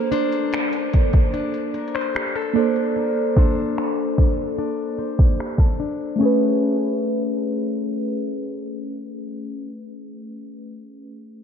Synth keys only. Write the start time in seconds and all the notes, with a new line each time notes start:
Already playing: A#3 D4 A4 C5
2.53 A#3 D4 A4
2.58 C5
6.16 A3 C#4
6.22 G#4 B4